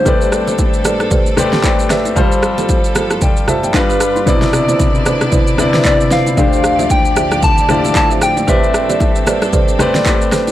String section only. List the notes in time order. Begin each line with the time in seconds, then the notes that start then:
Already playing: A2 G3
0.06 C4 D4 A4
2.16 G2 F3 A4
3.74 G3 F4 B4
4.27 D3 D4 E4 D5
6.37 D2 A2 F3 C4 G4 D5
8.48 G3 D4 A4